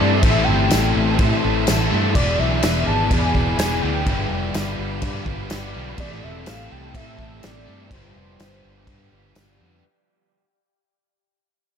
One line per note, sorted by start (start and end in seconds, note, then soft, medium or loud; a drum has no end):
0.00 0.21 G2 medium
0.00 0.21 A2 medium
0.00 0.23 E3 medium
0.00 0.24 E3 medium
0.00 0.22 A3 medium
0.00 0.23 C4 medium
0.00 0.24 C4 medium
0.00 0.25 E4 medium
0.00 0.26 E4 medium
0.00 2.11 G4 medium
0.00 0.25 A4 medium
0.00 0.25 A4 loud
0.00 0.23 D5 medium
0.00 4.03 E5 medium
0.00 2.11 A5 medium
0.00 2.11 C6 medium
0.21 0.44 A1 loud
0.21 1.89 A2 medium
0.21 0.95 A2 loud
0.21 0.70 E3 loud
0.21 1.90 E3 loud
0.21 0.70 A3 loud
0.21 0.71 C4 loud
0.21 0.45 E5 loud
0.21 kick loud
0.21 crash medium
0.25 1.89 A3 loud
0.25 0.72 E4 loud
0.25 0.73 E4 loud
0.25 0.73 A4 loud
0.44 1.17 G5 loud
0.48 0.69 G1 loud
0.70 0.93 A1 medium
0.70 1.19 E3 medium
0.70 1.18 A3 medium
0.70 1.20 C4 medium
0.70 1.19 C4 medium
0.70 1.21 E4 medium
0.70 1.20 E4 medium
0.70 1.22 A4 loud
0.70 snare loud
0.70 tambourine loud
0.70 crash medium
0.74 1.21 A4 medium
0.97 1.17 A1 medium
1.19 1.40 A2 medium
1.19 1.67 A2 loud
1.19 1.66 E3 loud
1.19 1.66 A3 medium
1.19 1.46 C4 loud
1.19 1.46 C4 medium
1.19 1.44 E4 loud
1.19 1.44 E4 medium
1.19 1.43 A4 loud
1.19 kick loud
1.19 crash medium
1.23 1.42 A4 medium
1.44 1.65 A1 loud
1.44 1.68 C4 medium
1.44 1.67 C4 medium
1.44 1.69 E4 medium
1.44 1.68 E4 medium
1.44 1.70 A4 medium
1.44 1.69 A4 medium
1.67 1.90 A1 medium
1.67 2.14 E3 medium
1.67 2.14 A3 medium
1.67 2.14 C4 medium
1.67 2.15 C4 medium
1.67 2.15 E4 medium
1.67 2.15 A4 loud
1.67 snare loud
1.67 tambourine loud
1.67 crash medium
1.71 2.16 A4 medium
1.90 2.17 G2 medium
1.90 2.15 A2 medium
1.90 2.14 E3 medium
1.90 2.13 A3 medium
2.14 2.36 E1 loud
2.14 3.81 E2 medium
2.14 2.87 E2 medium
2.14 3.82 B2 loud
2.14 2.87 B2 loud
2.14 2.87 E3 medium
2.14 2.61 E3 loud
2.14 3.80 E3 medium
2.14 2.87 G#3 medium
2.14 2.62 B3 medium
2.14 2.63 B3 loud
2.14 2.63 E4 loud
2.14 4.06 G#4 medium
2.14 2.41 D5 loud
2.14 4.06 B5 medium
2.14 5.96 D6 medium
2.14 kick loud
2.14 crash medium
2.18 2.64 D4 loud
2.18 2.64 G#4 loud
2.18 2.65 G#4 loud
2.18 2.65 D5 loud
2.39 2.60 B1 medium
2.39 2.86 E5 medium
2.62 2.84 E1 loud
2.62 3.10 E3 medium
2.62 3.11 B3 medium
2.62 3.11 D4 medium
2.62 3.12 E4 medium
2.62 3.12 G#4 medium
2.62 3.13 D5 medium
2.62 snare loud
2.62 tambourine medium
2.62 crash medium
2.87 3.08 G#1 medium
2.87 3.12 A5 loud
3.09 3.58 E2 medium
3.09 3.32 E2 medium
3.09 3.59 B2 medium
3.09 3.59 E3 loud
3.09 3.36 E3 medium
3.09 3.59 G#3 loud
3.09 3.35 B3 medium
3.09 3.37 B3 loud
3.09 3.34 D4 loud
3.09 3.36 E4 loud
3.09 3.33 G#4 medium
3.09 3.58 G#5 loud
3.09 kick loud
3.09 crash medium
3.13 3.35 G#4 loud
3.13 3.34 D5 loud
3.34 3.56 E1 medium
3.34 3.56 E3 medium
3.34 3.58 B3 medium
3.34 3.59 D4 medium
3.34 3.59 E4 medium
3.34 3.60 G#4 medium
3.34 3.61 D5 medium
3.34 kick medium
3.38 3.57 B3 medium
3.58 3.80 E1 loud
3.58 4.05 E3 medium
3.58 4.05 B3 medium
3.58 4.06 D4 medium
3.58 4.06 E4 medium
3.58 4.07 G#4 medium
3.58 3.81 G#5 loud
3.58 snare loud
3.58 tambourine loud
3.58 crash medium
3.62 4.07 D5 medium
3.82 4.04 D2 medium
3.82 4.06 E2 medium
3.82 4.06 B2 medium
3.82 4.05 E3 medium
3.82 5.23 G5 loud
4.05 4.28 G1 loud
4.05 4.78 G2 medium
4.05 5.73 G2 medium
4.05 4.79 D3 loud
4.05 5.74 D3 loud
4.05 4.52 F3 loud
4.05 5.03 G3 medium
4.05 4.54 G3 loud
4.05 4.54 B3 loud
4.05 4.54 D4 medium
4.05 4.56 F4 loud
4.05 7.88 G4 medium
4.05 4.56 G4 loud
4.05 5.97 F5 medium
4.05 5.98 B5 medium
4.05 kick loud
4.05 crash medium
4.10 5.74 G3 loud
4.10 4.57 B4 loud
4.10 4.58 D5 loud
4.30 4.52 F1 loud
4.53 4.76 G1 loud
4.53 5.01 F3 medium
4.53 5.03 G3 medium
4.53 5.02 B3 medium
4.53 5.03 D4 medium
4.53 5.04 F4 medium
4.53 5.04 G4 medium
4.53 snare loud
4.53 tambourine loud
4.53 crash medium
4.58 5.04 B4 medium
4.58 5.05 D5 medium
4.79 5.00 G1 medium
5.01 5.50 G2 medium
5.01 5.23 G2 medium
5.01 5.50 D3 medium
5.01 5.27 F3 medium
5.01 5.27 G3 loud
5.01 5.55 G3 loud
5.01 5.25 B3 medium
5.01 5.50 D4 loud
5.01 5.28 F4 loud
5.01 5.25 G4 loud
5.01 kick loud
5.01 crash medium
5.06 5.27 B4 loud
5.06 5.25 D5 loud
5.25 5.47 G1 loud
5.25 5.47 F3 medium
5.25 5.50 G3 medium
5.25 5.50 B3 medium
5.25 5.51 G4 medium
5.25 5.52 B4 medium
5.25 5.53 D5 medium
5.25 kick medium
5.30 5.51 F4 medium
5.48 5.72 G1 medium
5.48 5.96 F3 medium
5.48 5.99 G3 medium
5.48 5.98 B3 medium
5.48 5.98 D4 medium
5.48 5.98 F4 medium
5.48 6.00 G4 medium
5.48 snare loud
5.48 tambourine loud
5.48 crash medium
5.53 5.99 B4 medium
5.53 5.99 D5 medium
5.74 5.97 B1 medium
5.74 5.99 G2 medium
5.74 5.98 D3 medium
5.74 6.00 G3 medium
5.97 6.19 A1 loud
5.97 6.70 A2 loud
5.97 7.65 A2 medium
5.97 6.44 E3 loud
5.97 7.67 E3 loud
5.97 6.46 A3 medium
5.97 6.46 C4 loud
5.97 6.47 C4 loud
5.97 6.46 E4 loud
5.97 6.48 E4 medium
5.97 6.48 A4 loud
5.97 6.25 D5 loud
5.97 7.90 E5 medium
5.97 9.80 G5 medium
5.97 7.90 A5 medium
5.97 kick loud
5.97 crash medium
6.02 7.64 A3 loud
6.02 6.49 A4 loud
6.24 6.45 E1 loud
6.24 6.49 E5 loud
6.45 6.69 A1 medium
6.45 6.93 E3 medium
6.45 6.94 A3 medium
6.45 6.95 C4 medium
6.45 6.96 C4 medium
6.45 6.95 E4 medium
6.45 6.96 E4 medium
6.45 6.73 F5 loud
6.45 snare loud
6.45 tambourine medium
6.45 crash medium
6.49 6.96 A4 medium
6.49 6.97 A4 medium
6.71 6.93 C2 loud
6.71 6.95 G5 loud
6.93 7.42 A2 medium
6.93 7.16 A2 loud
6.93 7.40 E3 medium
6.93 7.42 A3 loud
6.93 7.21 C4 medium
6.93 7.23 C4 loud
6.93 7.18 E4 loud
6.93 7.16 A4 loud
6.93 7.18 E5 loud
6.93 kick loud
6.93 crash medium
6.98 7.20 E4 loud
6.98 7.18 A4 loud
7.18 7.40 A1 loud
7.18 7.42 C4 medium
7.18 7.43 E4 medium
7.18 7.45 E4 medium
7.18 7.44 A4 medium
7.18 7.45 A4 medium
7.18 7.46 E5 loud
7.18 kick medium
7.23 7.45 C4 medium
7.41 7.65 A1 medium
7.41 7.89 E3 medium
7.41 7.90 A3 medium
7.41 7.92 C4 medium
7.41 7.90 E4 medium
7.41 7.91 A4 medium
7.41 7.94 D5 loud
7.41 snare loud
7.41 tambourine loud
7.41 crash medium
7.46 7.91 E4 medium
7.46 7.92 A4 medium
7.66 7.89 G2 medium
7.66 7.90 E3 medium
7.66 7.89 A3 medium
7.70 7.91 A2 medium
7.90 8.12 G1 loud
7.90 8.63 G2 medium
7.90 9.58 G2 medium
7.90 8.63 D3 loud
7.90 9.59 D3 loud
7.90 8.37 F3 loud
7.90 8.38 G3 medium
7.90 8.38 G3 loud
7.90 9.58 G3 loud
7.90 8.39 B3 loud
7.90 8.40 D4 loud
7.90 8.41 F4 loud
7.90 9.82 G4 medium
7.90 8.40 G4 loud
7.90 9.36 C5 loud
7.90 9.82 D5 medium
7.90 9.82 F5 medium
7.90 kick loud
7.90 crash medium
7.94 8.42 B4 loud
8.16 8.37 F1 medium
8.38 8.61 G1 loud
8.38 8.86 F3 medium
8.38 8.87 G3 medium
8.38 8.86 G3 medium
8.38 8.88 B3 medium
8.38 8.87 D4 medium
8.38 8.88 F4 medium
8.38 8.88 G4 medium
8.38 snare loud
8.38 tambourine medium
8.38 crash medium
8.43 8.89 B4 medium
8.65 8.86 G1 medium
8.86 9.35 G2 medium
8.86 9.09 G2 medium
8.86 9.36 D3 medium
8.86 9.13 F3 medium
8.86 9.34 G3 loud
8.86 9.11 G3 loud
8.86 9.10 B3 loud
8.86 9.13 D4 loud
8.86 9.11 F4 loud
8.86 9.09 G4 loud
8.86 kick loud
8.86 crash medium
8.90 9.10 B4 loud
9.10 9.33 G1 loud
9.10 9.33 F3 medium
9.10 9.34 G3 medium
9.10 9.35 B3 medium
9.10 9.36 F4 medium
9.10 9.36 G4 medium
9.10 9.37 B4 medium
9.15 9.35 D4 medium
9.34 9.57 G1 loud
9.34 9.82 F3 medium
9.34 9.82 G3 medium
9.34 9.83 B3 medium
9.34 9.83 D4 loud
9.34 9.83 F4 medium
9.34 9.83 G4 medium
9.34 snare loud
9.34 tambourine loud
9.34 crash medium
9.38 9.84 B4 medium
9.59 9.81 F2 medium
9.59 9.84 G2 medium
9.59 9.83 D3 medium
9.59 9.82 G3 medium